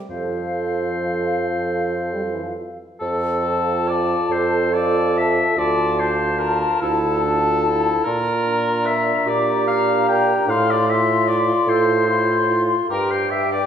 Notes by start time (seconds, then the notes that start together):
0.09 F2 F3 A4 C5 F5
2.13 G3
2.23 F3
2.33 E3
2.43 F3
3.00 F2 A4
3.45 F4 A5
3.88 D5
4.30 F2 A4 C5
4.73 F4 D5 A5
5.18 E5
5.57 D2 F4 D5 A5
5.99 F4 C5 A5
6.39 A#4
6.81 D2 E4 A4
7.23 D4 F4 A5
7.65 E4
8.05 A#2 F4 A#4
8.46 D4 A#5
8.86 E5
9.27 A#2 G4 D5
9.66 D4 F5 A#5
10.08 G5
10.48 A2 F4 F5 C6
10.70 D5
10.88 F4 E5 C6
11.28 D5
11.67 A2 A4 C5
12.07 E4 F4 C6
12.50 F4
12.89 G2 G4 A#4 G5
13.11 C5
13.31 E5
13.51 D5